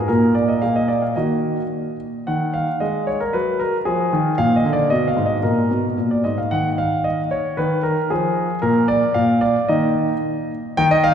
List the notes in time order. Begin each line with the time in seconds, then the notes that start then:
0.08 A#2 A#3 F4 A#4
0.35 D5
0.48 D#5
0.62 A#2 A#3 G#4 F5
0.76 D#5
0.88 D5
1.02 F5
1.16 D#3 A#3 F#4 D#5
2.27 D#3 F#5
2.54 F5
2.80 G#3 D#5
3.07 C#5
3.20 A#4
3.33 F#3 B4
3.60 A#4
3.85 F3 G#4
4.13 D#3
4.38 A#2 F5
4.56 D#5
4.65 D3
4.73 D5
4.90 B2 D#5
5.08 F5
5.17 G#2
5.26 D#5
5.43 A#2 A#4
5.71 B2
5.98 A#2
6.11 D5
6.24 G#2 D#5
6.38 F5
6.51 D#3 F#5
6.78 F5
7.04 D#5
7.31 C#5
7.57 D#3 B4
7.83 A#4
8.10 F3 G#4
8.62 A#2 A#4
8.88 D5
9.14 A#2 F5
9.41 D5
9.68 D#3 A#3 D#4 D#5
10.77 D#3 D#4 G5
10.91 D#5
11.04 F5